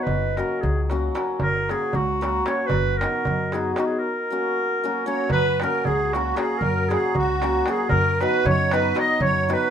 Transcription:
Already playing: F#3
0.03 F#1 B4, darbuka dum
0.21 darbuka tek
0.36 F#3 A#3 C#4 F#4 A#4, darbuka tek
0.50 darbuka tek
0.61 C#2 G#4, darbuka dum
0.77 darbuka tek
0.83 G#4
0.90 F#3 A#3 C#4 F#4, darbuka tek
1.15 F#3 A#3 C#4 F#4, darbuka tek
1.39 F#1 A#4, darbuka dum
1.55 darbuka tek
1.69 F#3 A#3 C#4 F#4 G#4, darbuka tek
1.82 darbuka tek
1.93 C#2 F#4, darbuka dum
2.09 darbuka tek
2.21 F#3 A#3 C#4 F#4, darbuka tek
2.45 F#3 A#3 C#4 F#4 C#5, darbuka tek
2.67 B4, darbuka dum
2.71 F#1
2.87 darbuka tek
2.97 A#4
3.01 F#3 B3 D#4 F#4, darbuka tek
3.13 darbuka tek
3.25 F#2, darbuka dum
3.39 darbuka tek
3.52 F#3 B3 D#4 F#4 G#4, darbuka tek
3.74 F#3 G#4, darbuka tek
3.78 B3 D#4 F#4
3.86 G#4
3.99 A#4
4.30 F#3 A#3 C#4 F#4
4.84 F#3 A#3 C#4 F#4
5.06 F#3 A#3 C#4 F#4 C#5
5.30 F#2 B4, darbuka dum
5.46 darbuka tek
5.60 F#3 A#3 C#4 F#4 A#4, darbuka tek
5.72 darbuka tek
5.85 C#2 G#4, darbuka dum
5.99 darbuka tek
6.13 F#3 A#3 C#4 F#4, darbuka tek
6.36 F#3 A#3 C#4 F#4 G#4, darbuka tek
6.58 F#2 A#4
6.62 darbuka dum
6.76 darbuka tek
6.89 F#3 A#3 C#4 F#4 G#4, darbuka tek
7.05 darbuka tek
7.15 C#2 F#4, darbuka dum
7.29 darbuka tek
7.42 F#3 A#3 C#4 F#4, darbuka tek
7.66 F#3 A#3 C#4 F#4 G#4, darbuka tek
7.70 G#4
7.89 F#2 A#4, darbuka dum
7.94 A#4
8.05 darbuka tek
8.20 F#3 B3 D#4 F#4 B4, darbuka tek
8.25 B4
8.33 darbuka tek
8.45 F#2 C#5, darbuka dum
8.71 F#3 B3 D#4 F#4 B4, darbuka tek
8.77 B4
8.95 F#3 B3 D#4 F#4, darbuka tek
8.99 D#5
9.20 F#2 C#5, darbuka dum
9.25 C#5
9.48 F#3 B3 D#4 F#4 B4, darbuka tek
9.54 B4

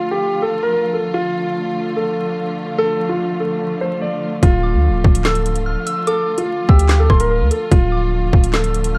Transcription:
Already playing: D3 F3 A3 F4
0.11 G4
0.42 A4
0.63 A#4
0.73 A#4
0.93 A4
1.14 F4
1.96 A4
2.78 A4
3.09 F4
3.40 A4
3.81 C5
4.02 D5
4.43 D1 F4, kick, closed hi-hat
4.63 D6
4.74 D2
4.89 D1
5.04 D1, kick
5.15 closed hi-hat
5.25 A4 E6, snare, clap, closed hi-hat
5.35 closed hi-hat
5.46 closed hi-hat
5.55 C1, closed hi-hat
5.66 D1 F6
5.87 E6, closed hi-hat
6.07 A4 D6, closed hi-hat
6.38 F4, closed hi-hat
6.69 D2 G4 E6, kick
6.79 closed hi-hat
6.89 D6, snare, clap, closed hi-hat
6.99 A4
7.10 D1 C6, kick, cross-stick
7.20 A#4, closed hi-hat
7.30 A#4
7.41 D2
7.51 A4, closed hi-hat
7.71 D1 D3 F3 A3 F4, kick, closed hi-hat
7.92 D6
8.33 D1, kick
8.44 closed hi-hat
8.54 A4 E6, snare, clap, closed hi-hat
8.64 closed hi-hat
8.74 closed hi-hat
8.84 closed hi-hat
8.95 F6

